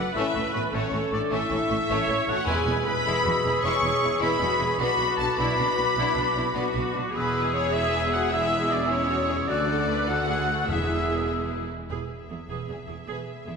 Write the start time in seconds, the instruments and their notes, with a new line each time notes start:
Already playing: french horn section F#4, violin section F#5
0.00 viola section B4
0.14 double bass section A1, cello section A2, violin section A3 C#4 E5, french horn section E4, clarinet A4, oboe E5, flute C#6
0.34 double bass section A1, cello section A2, violin section A3 C#4, clarinet A4, flute C#6
0.54 double bass section A1, cello section A2, violin section A3 C#4 B4, french horn section B3, clarinet A4, oboe B4, flute C#6
0.72 double bass section A1, cello section A2, violin section A3 C#4 C#5, french horn section C#4, clarinet A4, viola section A4, oboe C#5, flute C#6
0.90 double bass section A1, cello section A2, clarinet A4, flute C#6
0.94 violin section A3 C#4
1.11 double bass section A1, cello section A2, violin section A3 C#4 D5, french horn section D4, clarinet A4, oboe D5, flute C#6
1.30 double bass section A1, cello section A2, violin section A3 C#4 E5, clarinet A4, flute C#6
1.34 french horn section E4, oboe E5
1.50 double bass section A1, cello section A2, violin section A3 C#4, clarinet A4, flute C#6
1.69 double bass section A1, cello section A2, violin section A3 C#4, clarinet A4, flute C#6
1.89 double bass section A1, cello section A2, violin section A3 C#4, clarinet A4, viola section C#5, flute C#6
2.07 double bass section A1, cello section A2, violin section A3 C#4, clarinet A4, flute C#6
2.27 double bass section A1, cello section A2, violin section C#4, french horn section F#4, clarinet A4, oboe F#5, flute C#6
2.31 violin section A3 F#5
2.47 double bass section E1, timpani E2, cello section E2, violin section G#3 E4 G#5, clarinet G#4, french horn section G#4, viola section B4, oboe G#5, flute E6
2.66 double bass section E1, cello section E2, violin section G#3 E4
2.86 double bass section E1, cello section E2, violin section G#3 E4 B5, french horn section B4, oboe B5
3.05 double bass section E1, cello section E2, violin section G#3 E4, viola section G#4
3.24 double bass section E1, cello section E2, violin section G#3, viola section F#4
3.29 violin section E4
3.44 double bass section E1, cello section E2, violin section G#3 E4, viola section G#4
3.63 double bass section E1, cello section E2, violin section G#3 E4 C#6, french horn section C#5, oboe C#6
3.83 double bass section E1, cello section E2, violin section G#3 E4
4.02 double bass section E1, cello section E2, violin section G#3 E4
4.20 double bass section E1, cello section E2, violin section G#3 E4 B5, viola section E4, french horn section B4, oboe B5
4.39 double bass section E1, cello section E2, violin section G#3 E4, viola section F#4
4.59 double bass section E1, cello section E2, violin section G#3 E4, viola section G#4
4.78 double bass section B1, cello section B2, violin section B3 D4 B5, clarinet F#4, viola section F#4, french horn section B4, oboe B5, flute D6
4.98 double bass section B1, cello section B2, violin section B3 D4
5.17 double bass section B1, cello section B2, violin section B3 D4 A5, french horn section A4, oboe A5
5.37 double bass section B1, cello section B2, violin section B3 D4 B5, viola section E4, french horn section B4, oboe B5
5.57 double bass section B1, cello section B2, violin section B3 D4, viola section D4
5.77 double bass section B1, cello section B2, violin section B3 D4, viola section F#4
5.96 double bass section B1, cello section B2, violin section B3 D4, viola section E4
6.16 double bass section B1, cello section B2, violin section B3 D4, viola section D4
6.35 double bass section B1, cello section B2, violin section B3 D4, viola section E4
6.53 double bass section B1, cello section B2, violin section B3 D4, viola section F#4
6.73 double bass section B1, cello section B2, violin section B3 D4
6.93 double bass section B1, cello section B2, violin section B3 D4
7.13 double bass section E1, cello section E2, violin section G#3 E4 B4, french horn section B3, viola section G#4, clarinet G#4, oboe B4, flute E6
7.53 french horn section C#4, oboe C#5, violin section C#5
7.72 violin section G#3 E4 E5, french horn section E4, clarinet G#4, oboe E5, flute E6
8.13 french horn section F#4, violin section F#5, oboe F#5
8.31 violin section G#3 E4 E5, french horn section E4, clarinet G#4, oboe E5, flute E6
8.71 french horn section D4, violin section D5, oboe D5
8.90 french horn section C#4, viola section E4, oboe C#5, violin section C#5
9.09 viola section F#4
9.28 viola section G#4
9.48 double bass section D2, cello section D2, violin section A3 F#4 D5, french horn section D4, viola section F#4, clarinet A4, oboe D5, flute F#6
9.68 viola section A4
9.89 viola section B4
10.08 violin section A3 F#4 F#5, french horn section F#4, viola section A4, clarinet A4, oboe F#5, flute F#6
10.28 viola section G#4
10.49 viola section F#4
10.67 double bass section E1, timpani E2, cello section E2, violin section G#3 E4 E5, french horn section E4, clarinet G#4, viola section G#4, oboe E5, flute E6
11.89 double bass section E1, cello section E2, viola section G#4, violin section B4 E5
12.29 double bass section E1, cello section E2, violin section E4, viola section G#4
12.49 double bass section E1, cello section E2, viola section G#4, violin section B4
12.69 double bass section E1, cello section E2, viola section G#4, violin section G#4
12.87 double bass section E1, cello section E2, violin section E4, viola section G#4
13.07 double bass section E1, cello section E2, viola section G#4, violin section B4
13.47 double bass section E1, cello section E2, violin section E4, viola section G#4